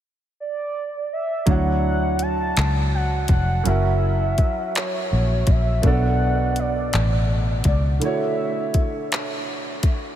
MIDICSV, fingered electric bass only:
0, 0, Header, 1, 3, 480
1, 0, Start_track
1, 0, Key_signature, 2, "major"
1, 0, Tempo, 727273
1, 971, Time_signature, 6, 3, 24, 8
1, 6703, End_track
2, 0, Start_track
2, 0, Title_t, "Fingered electric bass"
2, 0, Program_c, 0, 33
2, 975, Note_on_c, 0, 38, 103
2, 1666, Note_off_c, 0, 38, 0
2, 1699, Note_on_c, 0, 37, 92
2, 2148, Note_off_c, 0, 37, 0
2, 2175, Note_on_c, 0, 29, 84
2, 2389, Note_off_c, 0, 29, 0
2, 2421, Note_on_c, 0, 30, 118
2, 2869, Note_off_c, 0, 30, 0
2, 3383, Note_on_c, 0, 34, 79
2, 3593, Note_off_c, 0, 34, 0
2, 3618, Note_on_c, 0, 34, 93
2, 3831, Note_off_c, 0, 34, 0
2, 3857, Note_on_c, 0, 35, 106
2, 4547, Note_off_c, 0, 35, 0
2, 4581, Note_on_c, 0, 33, 107
2, 5030, Note_off_c, 0, 33, 0
2, 5053, Note_on_c, 0, 37, 83
2, 5268, Note_off_c, 0, 37, 0
2, 6703, End_track
3, 0, Start_track
3, 0, Title_t, "Muted fingered electric bass strokes"
3, 2898, Note_on_c, 9, 29, 49
3, 2964, Note_off_c, 9, 29, 0
3, 6703, End_track
0, 0, End_of_file